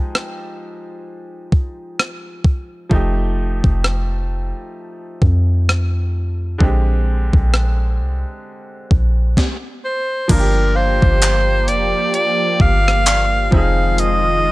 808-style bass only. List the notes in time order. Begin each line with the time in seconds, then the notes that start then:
2.91 F1
3.64 F1
5.22 F2
6.61 A#1
7.33 A#1
8.00 C2
8.91 A#1
10.30 G1
11.03 G1
11.69 F1
12.60 G1
13.52 F1